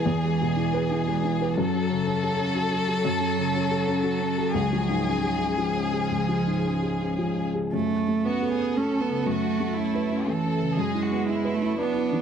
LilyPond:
<<
  \new Staff \with { instrumentName = "Violin section" } { \time 3/4 \key cis \phrygian \tempo 4 = 119 gis'2. | a'2.~ | a'2. | gis'2.~ |
gis'2~ gis'8 r8 | \key fis \minor r4 fis'8 gis'8 a'4 | fis'4 e'4 a'4 | gis'8 fis'8 e'4 d'4 | }
  \new Staff \with { instrumentName = "Upright piano" } { \time 3/4 \key cis \phrygian \tuplet 3/2 { <e, b'>8 gis8 b,8 e'8 b'8 e'8 gis8 e'8 b'8 } | \tuplet 3/2 { fis,8 fis8 cis8 cis'8 a'8 cis'8 fis8 cis'8 a'8 } | \tuplet 3/2 { fis,8 fis8 cis8 cis'8 a'8 cis'8 fis8 cis'8 a'8 } | \tuplet 3/2 { cis,8 eis8 gis,8 cis'8 gis'8 cis'8 eis8 cis'8 gis'8 } |
\tuplet 3/2 { cis,8 eis8 gis,8 cis'8 gis'8 cis'8 eis8 cis'8 gis'8 } | \key fis \minor \tuplet 3/2 { fis,8 cis'8 a8 cis'8 a'8 cis'8 a8 cis'8 cis8 } | \tuplet 3/2 { fis,8 cis'8 a8 cis'8 b'8 cis'8 a8 cis'8 cis8 } | \tuplet 3/2 { fis,8 e'8 b8 e'8 b'8 e'8 b8 e'8 e8 } | }
  \new Staff \with { instrumentName = "Cello" } { \time 3/4 \key cis \phrygian e2. | fis2.~ | fis2.~ | fis2 eis4~ |
eis2~ eis8 r8 | \key fis \minor a4 b4 cis'8 b8 | a2 e4 | gis4. a8 b4 | }
>>